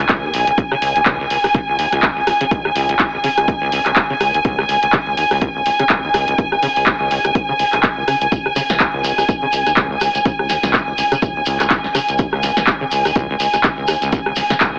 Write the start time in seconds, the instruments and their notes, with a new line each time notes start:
Already playing: string section G#5
0.09 acid bass C#2, kick, clap, closed hi-hat
0.23 acid bass E2
0.34 acid bass B1, open hi-hat
0.47 acid bass C#2, closed hi-hat
0.58 acid bass C#2, kick, closed hi-hat
0.71 acid bass C#3, cross-stick
0.82 acid bass C#2, open hi-hat
0.96 acid bass D#2, closed hi-hat
1.06 acid bass C#2, kick, cross-stick, clap, closed hi-hat
1.20 acid bass C#2
1.30 acid bass C#2, open hi-hat
1.44 acid bass C#2, cross-stick, open hi-hat
1.54 acid bass C#3, kick, closed hi-hat
1.68 acid bass C#2
1.79 acid bass D#2, open hi-hat
1.92 acid bass C#2, cross-stick, closed hi-hat
2.02 acid bass C#2, kick, clap, closed hi-hat
2.17 acid bass C#2
2.27 acid bass C#2, cross-stick, open hi-hat
2.41 acid bass C#3, closed hi-hat
2.51 acid bass C#2, kick, closed hi-hat
2.65 acid bass D#2, cross-stick
2.75 acid bass C#2, open hi-hat
2.89 acid bass C#2, closed hi-hat
2.99 acid bass C#2, kick, cross-stick, clap, closed hi-hat
3.13 acid bass C#2
3.24 acid bass C#3, open hi-hat
3.38 acid bass C#2, cross-stick, closed hi-hat
3.48 acid bass D#2, kick, closed hi-hat
3.62 acid bass C#2
3.72 acid bass C#2, open hi-hat
3.85 acid bass C#2, cross-stick, clap, closed hi-hat
3.96 acid bass C#2, kick, clap, closed hi-hat
4.10 acid bass C#3
4.21 acid bass C#2, cross-stick, open hi-hat
4.34 acid bass D#2, closed hi-hat
4.45 acid bass C#2, kick, closed hi-hat
4.58 acid bass C#2, cross-stick
4.69 acid bass C#2, open hi-hat
4.83 acid bass C#2, closed hi-hat
4.93 acid bass C#3, kick, cross-stick, clap, closed hi-hat
5.07 acid bass C#2
5.17 acid bass D#2, open hi-hat
5.31 acid bass C#2, cross-stick, open hi-hat
5.41 acid bass C#2, kick, closed hi-hat
5.55 acid bass C#2
5.66 acid bass C#2, open hi-hat
5.79 acid bass C#3, cross-stick, closed hi-hat
5.89 acid bass C#2, kick, clap, closed hi-hat
6.04 acid bass D#2
6.14 acid bass C#2, cross-stick, open hi-hat
6.28 acid bass C#2, closed hi-hat
6.38 acid bass C#2, kick, closed hi-hat
6.52 acid bass C#2, cross-stick
6.62 acid bass C#3, open hi-hat
6.76 acid bass C#2, open hi-hat
6.86 acid bass D#2, kick, cross-stick, clap, closed hi-hat
7.00 acid bass C#2
7.11 acid bass C#2, open hi-hat
7.25 acid bass C#2, cross-stick, closed hi-hat
7.35 acid bass C#2, kick, closed hi-hat
7.49 acid bass C#3
7.59 acid bass C#2, open hi-hat
7.73 acid bass B1, cross-stick, clap, closed hi-hat
7.83 acid bass C#2, kick, clap, closed hi-hat
7.97 acid bass C#2
8.08 acid bass C#3, cross-stick, open hi-hat
8.21 acid bass C#2, closed hi-hat
8.32 acid bass C#2, kick, closed hi-hat, shekere
8.46 acid bass C#2, cross-stick
8.56 acid bass C#3, snare, open hi-hat, shekere
8.69 acid bass C#2, snare, closed hi-hat, shekere
8.80 acid bass D#2, kick, cross-stick, clap, closed hi-hat, shekere
8.94 acid bass C#2
9.04 acid bass C#2, open hi-hat, shekere
9.18 acid bass C#2, cross-stick, open hi-hat, shekere
9.29 acid bass C#2, kick, closed hi-hat, shekere
9.42 acid bass C#3
9.52 acid bass C#2, open hi-hat, shekere
9.66 acid bass D#2, cross-stick, closed hi-hat, shekere
9.77 acid bass C#2, kick, clap, closed hi-hat, shekere
9.91 acid bass C#2
10.01 acid bass C#2, cross-stick, open hi-hat, shekere
10.15 acid bass C#2, closed hi-hat, shekere
10.25 acid bass C#3, kick, closed hi-hat, shekere
10.39 acid bass C#2, cross-stick
10.49 acid bass D#2, snare, open hi-hat, shekere
10.63 acid bass C#2, snare, closed hi-hat, shekere
10.73 kick, cross-stick, clap, closed hi-hat, shekere
10.88 acid bass C#2
10.98 acid bass C#2, open hi-hat, shekere
11.12 acid bass C#3, cross-stick, closed hi-hat, shekere
11.22 acid bass C#2, kick, closed hi-hat, shekere
11.36 acid bass D#2
11.46 acid bass C#2, open hi-hat, shekere
11.60 acid bass C#2, cross-stick, clap, closed hi-hat, shekere
11.70 acid bass C#2, kick, clap, closed hi-hat, shekere
11.84 acid bass C#2, snare
11.95 acid bass C#3, cross-stick, open hi-hat, shekere
12.08 acid bass C#2, closed hi-hat, shekere
12.18 acid bass D#2, kick, closed hi-hat, shekere
12.33 acid bass C#2, cross-stick
12.43 acid bass C#2, snare, open hi-hat, shekere
12.57 acid bass C#2, snare, closed hi-hat, shekere
12.67 acid bass C#2, kick, cross-stick, clap, closed hi-hat, shekere
12.81 acid bass C#3
12.91 acid bass C#2, open hi-hat, shekere
13.05 acid bass D#2, cross-stick, open hi-hat, shekere
13.15 acid bass C#2, kick, closed hi-hat, shekere
13.30 acid bass C#2
13.40 acid bass C#2, open hi-hat, shekere
13.53 acid bass C#2, cross-stick, closed hi-hat, shekere
13.64 acid bass C#3, kick, clap, closed hi-hat, shekere
13.78 acid bass C#2
13.87 acid bass D#2, cross-stick, open hi-hat, shekere
14.02 acid bass C#2, closed hi-hat, shekere
14.12 acid bass C#2, kick, closed hi-hat, shekere
14.26 acid bass C#2, cross-stick
14.36 acid bass C#2, snare, open hi-hat, shekere
14.50 acid bass C#3, snare, closed hi-hat, shekere
14.60 acid bass C#2, kick, cross-stick, clap, closed hi-hat, shekere
14.75 acid bass D#2